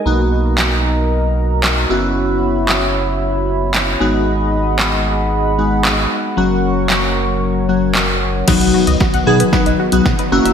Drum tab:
CC |----------------|----------------|----------------|----------------|
HH |----------------|----------------|----------------|----------------|
CP |----x-------x---|----x-------x---|----x-------x---|----x-------x---|
SD |----o-------o---|----o-------o---|----o-------o---|----o-------o---|
BD |----------------|----------------|----------------|----------------|

CC |x---------------|
HH |-x-x-x-x-x-x-x-x|
CP |----------------|
SD |o---o---o---o---|
BD |o---o---o---o---|